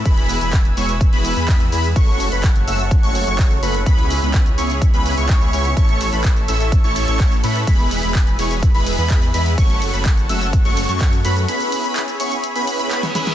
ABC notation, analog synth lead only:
X:1
M:4/4
L:1/16
Q:1/4=126
K:Emix
V:1 name="Analog synth lead"
b3 b z2 c' z2 b2 b2 z b z | c'3 b z2 e' z2 c'2 c'2 z b z | b3 b z2 c' z2 b2 c'3 c'2 | c'3 b z2 e' z2 c'2 c'2 z b z |
b3 b z2 c' z2 b2 b2 z b z | c'3 b z2 e' z2 c'2 c'2 z b z | b3 b z2 c' z2 b2 b2 z b z |]